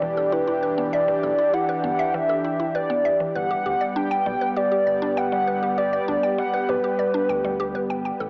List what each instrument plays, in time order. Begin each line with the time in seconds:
Already playing: analog synth pad E3 D4 G4, synth texture G4, soft synth lead D5
0.02 analog synth bass E1, synth arpeggio sound E3
0.17 synth arpeggio sound A4
0.32 synth arpeggio sound E4, soft synth lead B4
0.48 synth arpeggio sound E4
0.63 synth arpeggio sound B4
0.78 synth arpeggio sound B3
0.93 soft synth lead D5, synth arpeggio sound E5
1.08 synth arpeggio sound E3
1.23 analog synth bass B1, synth arpeggio sound A4
1.39 synth arpeggio sound E4
1.54 synth arpeggio sound E4, soft synth lead F#5
1.69 synth arpeggio sound B4
1.84 analog synth bass G1, synth arpeggio sound B3
1.99 synth arpeggio sound E5
2.14 synth arpeggio sound E3, soft synth lead E5
2.29 synth arpeggio sound A4
2.44 synth arpeggio sound E4
2.60 synth arpeggio sound E4
2.75 synth arpeggio sound B4, soft synth lead D5
2.90 synth arpeggio sound B3
3.05 synth arpeggio sound E5
3.20 synth arpeggio sound E3
3.35 analog synth bass G1, analog synth pad G3 B3 G4, synth arpeggio sound B4, soft synth lead F#5
3.51 synth arpeggio sound G4
3.66 analog synth bass D2, synth arpeggio sound G4
3.81 synth arpeggio sound D5
3.96 synth arpeggio sound D4, soft synth lead G5
4.11 synth arpeggio sound G5
4.26 analog synth bass B1, synth arpeggio sound G3
4.41 synth arpeggio sound B4
4.57 synth arpeggio sound G4, soft synth lead D5
4.72 synth arpeggio sound G4
4.87 analog synth bass G1, synth arpeggio sound D5
5.02 synth arpeggio sound D4
5.17 soft synth lead F#5, synth arpeggio sound G5
5.32 synth arpeggio sound G3
5.47 synth arpeggio sound B4
5.63 synth arpeggio sound G4
5.78 synth arpeggio sound G4, soft synth lead D5
5.93 synth arpeggio sound D5
6.08 analog synth bass D2, synth arpeggio sound D4
6.23 synth arpeggio sound G5
6.38 synth arpeggio sound G3, soft synth lead F#5
6.54 synth arpeggio sound B4
6.69 analog synth bass B1, synth arpeggio sound G4, soft synth lead B4
6.84 synth arpeggio sound G4
6.99 synth arpeggio sound D5
7.14 synth arpeggio sound D4
7.29 analog synth bass D2, synth arpeggio sound G5
7.44 synth arpeggio sound G3
7.60 synth arpeggio sound G4
7.75 analog synth bass G1, synth arpeggio sound B4
7.90 synth arpeggio sound G5
8.05 synth arpeggio sound G5
8.20 analog synth bass A1, analog synth pad C3 A3 G4, synth arpeggio sound A4